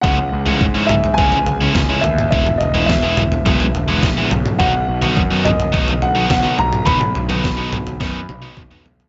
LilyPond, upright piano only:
\new Staff \with { instrumentName = "Upright piano" } { \time 4/4 \key b \major \tempo 4 = 106 fis''4. e''8 gis''4. e''8 | e''8 dis''8 e''2~ e''8 r8 | fis''4. dis''4 fis''8 fis''8 ais''8 | b''2. r4 | }